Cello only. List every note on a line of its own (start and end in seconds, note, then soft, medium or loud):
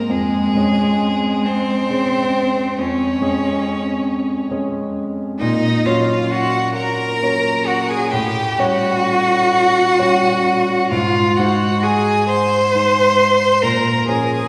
0.09 1.47 G#3 medium
1.45 2.79 C4 loud
2.77 4.51 C#4 medium
5.39 5.87 D#4 loud
5.85 6.32 F4 medium
6.31 6.75 F#4 loud
6.75 7.69 A#4 loud
7.67 7.92 F#4 medium
7.90 8.11 G#4 medium
8.11 8.60 G4 loud
8.58 10.91 F#4 loud
10.91 11.38 F4 loud
11.37 11.85 F#4 loud
11.83 12.28 G#4 loud
12.29 13.64 C5 loud
13.62 14.07 A#4 loud
14.08 14.48 G#4 loud